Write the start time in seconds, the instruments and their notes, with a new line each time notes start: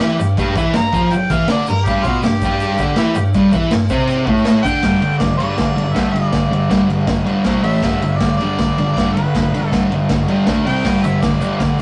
Already playing: harmonica G4
0.00 distorted electric guitar E3 E4, shaker
0.19 distorted electric guitar G2, shaker
0.37 distorted electric guitar G2 G3, kick, crash, shaker
0.56 distorted electric guitar E3 E4, kick, shaker
0.74 distorted electric guitar G2, harmonica A#5, snare, crash, shaker
0.93 distorted electric guitar F3 F4, kick, shaker
1.11 harmonica G5, muted distorted electric guitar stroke, crash, shaker
1.30 distorted electric guitar E3 E4, harmonica F5, kick, shaker
1.48 distorted electric guitar D3 D4, harmonica D5, snare, crash, shaker
1.66 distorted electric guitar G2, harmonica A#4, shaker
1.77 shaker
1.85 distorted electric guitar G2 G3, harmonica G4, kick, crash, shaker
2.03 distorted electric guitar B2 B3, harmonica F4, kick, shaker
2.13 shaker
2.23 distorted electric guitar G2, harmonica G4, snare, crash, shaker
2.42 distorted electric guitar G2 G3, kick, shaker
2.60 crash, shaker
2.78 distorted electric guitar D3 D4, kick, shaker
2.96 distorted electric guitar E3 E4, snare, crash, shaker
3.15 distorted electric guitar G2, shaker
3.34 distorted electric guitar G2 G3, kick, crash, shaker
3.52 distorted electric guitar E3 E4, kick, shaker
3.71 distorted electric guitar G2, snare, crash, shaker
3.89 distorted electric guitar C3 C4, kick, shaker
4.00 shaker
4.07 crash, shaker
4.27 distorted electric guitar A2 A3, kick
4.37 shaker
4.45 snare, crash, shaker
4.62 distorted electric guitar D3 D4, harmonica G5, kick, shaker
4.83 distorted electric guitar G2 D3 G3, kick, snare, ride
5.01 distorted electric guitar G2 D3, ride
5.18 distorted electric guitar G2, harmonica D5, kick, snare, ride
5.22 distorted electric guitar D3
5.37 distorted electric guitar G2 D3 G3, harmonica D5, ride
5.57 distorted electric guitar G2 D3, kick, snare, ride
5.76 distorted electric guitar G2 D3, ride
5.92 distorted electric guitar G2 D3 G3, harmonica E5, kick, snare, ride
6.11 distorted electric guitar G2 D3, harmonica D5
6.16 ride
6.32 distorted electric guitar G2 D3, kick, snare, ride
6.51 distorted electric guitar G2 D3, ride
6.70 distorted electric guitar G2 D3 G3, kick, snare, ride
6.89 distorted electric guitar G2 D3, ride
7.07 distorted electric guitar G2 D3, kick, snare, ride
7.25 distorted electric guitar G2 D3 G3, ride
7.44 distorted electric guitar C3 G3 C4, kick, snare, ride
7.62 distorted electric guitar A2 E3 A3, harmonica E5, ride
7.82 distorted electric guitar G2 D3 G3, kick, snare, ride
8.02 distorted electric guitar G2 D3, ride
8.16 harmonica D5
8.21 distorted electric guitar G2 D3, kick, snare, ride
8.37 distorted electric guitar G2, harmonica D5, ride
8.41 distorted electric guitar D3 G3
8.59 distorted electric guitar G2 D3, kick, snare, ride
8.78 distorted electric guitar G2 D3, ride
8.93 distorted electric guitar G2, harmonica D5
8.97 distorted electric guitar D3 G3, kick, snare, ride
9.13 distorted electric guitar G2 D3, harmonica B4
9.17 ride
9.35 distorted electric guitar G2 D3, kick, snare, ride
9.54 distorted electric guitar G2 D3, ride
9.67 harmonica A4
9.71 distorted electric guitar G2 D3 G3, kick, snare, ride
9.91 distorted electric guitar G2 D3, ride
10.09 distorted electric guitar G2 D3, kick, snare, ride
10.28 distorted electric guitar G2 D3 G3, ride
10.46 distorted electric guitar D3 A3 D4, kick, snare, ride
10.66 distorted electric guitar C3 G3 C4, harmonica G5, ride
10.84 distorted electric guitar G2 D3 G3, kick, snare, crash, shaker
11.03 distorted electric guitar G2 D3, harmonica E5, ride, shaker
11.22 distorted electric guitar G2 D3, harmonica D5, kick, snare, ride, shaker
11.41 distorted electric guitar G2 D3 G3, ride, shaker
11.56 distorted electric guitar G2 D3, harmonica D5
11.60 kick, snare, ride, shaker
11.79 distorted electric guitar G2, shaker